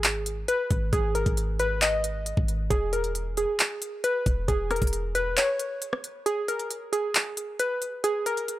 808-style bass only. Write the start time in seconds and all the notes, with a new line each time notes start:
Already playing: G#1
0.71 G#1
0.93 G#1
1.26 G#1
2.37 G#1
2.71 E1
4.26 E1
4.48 E1
4.82 E1